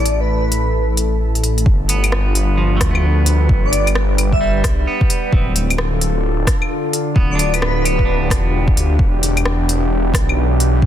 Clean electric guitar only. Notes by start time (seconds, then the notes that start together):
Already playing: B3
1.89 B3
2.58 F3
2.77 A3
2.91 B3
4.41 G3
4.87 B3
5.33 C4
7.16 B3
7.35 D4
7.85 B3
8.05 D4